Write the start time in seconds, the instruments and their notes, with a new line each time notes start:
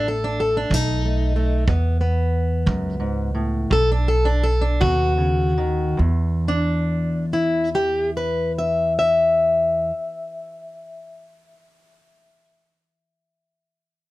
Already playing: upright bass A1, steel-string acoustic guitar B2 A3
0.08 steel-string acoustic guitar A4
0.24 steel-string acoustic guitar D4
0.40 steel-string acoustic guitar A4
0.57 steel-string acoustic guitar D4
0.70 upright bass B1, steel-string acoustic guitar F#3 D#4, kick
1.05 steel-string acoustic guitar A3
1.36 steel-string acoustic guitar A3
1.67 upright bass E2, steel-string acoustic guitar E2 B3, kick
2.01 steel-string acoustic guitar B3
2.66 upright bass C#2, steel-string acoustic guitar F#2, kick
3.00 steel-string acoustic guitar G#2
3.35 steel-string acoustic guitar A2
3.70 upright bass B1, steel-string acoustic guitar B2 A4, kick
3.92 steel-string acoustic guitar D4
4.08 steel-string acoustic guitar A4
4.25 steel-string acoustic guitar D4
4.43 steel-string acoustic guitar A4
4.61 steel-string acoustic guitar D4
4.80 upright bass D#2, steel-string acoustic guitar B2 F#4, kick
5.17 steel-string acoustic guitar C#3
5.58 steel-string acoustic guitar D#3
5.97 steel-string acoustic guitar E2, upright bass E2
6.48 steel-string acoustic guitar D4
7.33 steel-string acoustic guitar E4
7.75 steel-string acoustic guitar G4
8.17 steel-string acoustic guitar B4
8.58 steel-string acoustic guitar E5
8.99 steel-string acoustic guitar E5